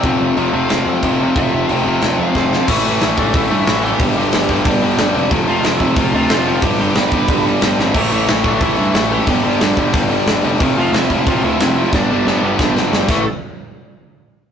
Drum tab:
CC |x-x-x-x-|x-x-x---|x-------|--------|
HH |--------|--------|--o-o-o-|o-o-o-o-|
SD |----o---|----o-oo|--o---o-|--o---o-|
BD |o-----o-|o-----o-|o--oo---|o--oo---|

CC |--------|--------|x-------|--------|
HH |o-o-o-o-|o-o-o-o-|--o-o-o-|o-o-o-o-|
SD |--o---o-|--o---oo|--o---o-|--o---o-|
BD |o--oo---|o--oo---|o--oo---|o--oo---|

CC |--------|-------x|--------|
HH |o-o-o-o-|--------|--------|
SD |--o---o-|o-o-ooo-|--------|
BD |o--oo---|o---o--o|--------|